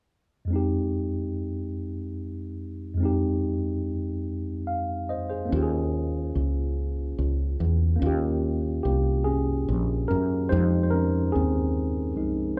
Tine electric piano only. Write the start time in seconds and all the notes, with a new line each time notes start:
0.45 F2 G#3
0.50 C4 D#4
0.56 G4
2.95 F2 G#3
3.00 C4 D#4
3.05 G4
4.67 F5
5.09 C5 D#5
5.29 G#4 C5
5.45 A#3 C#4
5.52 F4 G4
5.63 G#4
7.96 A#3 C#4
8.03 F4 G4
8.83 A#3 G4
9.24 C#4 G#4
10.08 C#4 A#4
10.49 G#3 D#4 G4 C5
10.83 C5
10.90 C#4 A#4
11.32 C4 G#4
12.16 F3 G#3 D#4